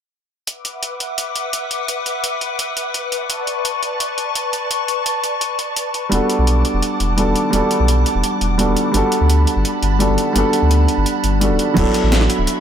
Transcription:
0.47 B4 E5 F#5 D6, closed hi-hat
0.65 closed hi-hat
0.83 closed hi-hat
1.00 closed hi-hat
1.18 closed hi-hat
1.36 closed hi-hat
1.53 closed hi-hat
1.71 closed hi-hat
1.88 closed hi-hat
2.06 closed hi-hat
2.24 closed hi-hat
2.41 closed hi-hat
2.59 closed hi-hat
2.77 closed hi-hat
2.94 closed hi-hat
3.12 D5 A5 C#6, closed hi-hat
3.30 closed hi-hat
3.47 closed hi-hat
3.65 closed hi-hat
3.83 closed hi-hat
4.00 closed hi-hat
4.18 closed hi-hat
4.35 closed hi-hat
4.53 closed hi-hat
4.71 closed hi-hat
4.88 closed hi-hat
5.06 closed hi-hat
5.24 closed hi-hat
5.41 closed hi-hat
5.59 closed hi-hat
5.76 closed hi-hat
5.94 closed hi-hat
6.09 E1 G3 B3 D4 F#5 A5 D6, closed hi-hat
6.13 F#4 A4
6.30 closed hi-hat
6.39 B1
6.47 closed hi-hat
6.65 closed hi-hat
6.74 E1
6.83 closed hi-hat
7.00 E1, closed hi-hat
7.16 G3 B3 D4 F#4 A4, closed hi-hat
7.27 E1
7.36 closed hi-hat
7.50 E1 G3 B3 D4, closed hi-hat
7.54 F#4 A4
7.71 closed hi-hat
7.80 B1
7.88 closed hi-hat
8.06 closed hi-hat
8.15 E1
8.24 closed hi-hat
8.41 E1, closed hi-hat
8.58 G3 B3 D4 F#4 A4, closed hi-hat
8.68 E1
8.77 closed hi-hat
8.92 G1 G3 B3 D4 F#4 A5 B5, closed hi-hat
8.97 A4
9.12 closed hi-hat
9.21 D2
9.30 closed hi-hat
9.47 closed hi-hat
9.56 G1
9.65 closed hi-hat
9.83 G1, closed hi-hat
9.99 G3 B3 D4 F#4 A4, closed hi-hat
10.09 G1
10.18 closed hi-hat
10.33 G1 G3 B3 D4 F#4, closed hi-hat
10.38 A4
10.53 closed hi-hat
10.62 D2
10.71 closed hi-hat
10.88 closed hi-hat
10.98 G1
11.06 closed hi-hat
11.24 G1, closed hi-hat
11.40 G3 B3 D4 F#4 A4, closed hi-hat
11.51 D1
11.59 closed hi-hat
11.74 D1 F#3 B3 D4 F#4 E5 B5, kick, closed hi-hat, crash
11.78 E4 A4
11.86 closed hi-hat
11.94 closed hi-hat
12.04 A1
12.12 snare, closed hi-hat
12.21 snare
12.30 closed hi-hat
12.39 D1
12.47 closed hi-hat

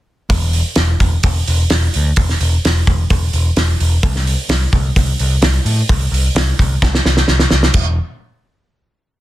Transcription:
0.30 E1, kick, open hi-hat
0.53 open hi-hat
0.76 E1, snare, open hi-hat
1.00 E1, kick, open hi-hat
1.23 E1, kick, open hi-hat
1.48 E1, open hi-hat
1.70 E1, snare, open hi-hat
1.94 D2, open hi-hat
2.16 E1, kick, open hi-hat
2.29 snare
2.41 E1, open hi-hat
2.65 E1, snare, open hi-hat
2.87 E1, kick, open hi-hat
3.10 E1, kick, open hi-hat
3.33 E1, open hi-hat
3.56 E1, snare, open hi-hat
3.80 E1, open hi-hat
4.03 C2, kick, open hi-hat
4.16 snare
4.27 open hi-hat
4.49 C2, snare, open hi-hat
4.73 C2, kick, open hi-hat
4.96 C2, kick, open hi-hat
5.19 C2, open hi-hat
5.42 C2, snare, open hi-hat
5.65 A2, open hi-hat
5.89 C2, kick, open hi-hat
6.12 C2, open hi-hat
6.35 C2, snare, open hi-hat
6.59 C2, kick, open hi-hat
6.82 C2, kick, snare
6.95 snare
7.05 C2, snare
7.17 snare
7.28 C2, snare
7.39 snare
7.50 C2, snare
7.63 snare
7.74 E1, kick, crash

